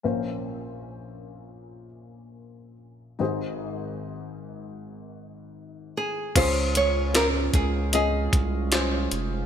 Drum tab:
CC |--------|--------|x-------|
HH |--------|--------|xxxxxxxx|
SD |--------|--------|--o---o-|
BD |--------|--------|o--o-o--|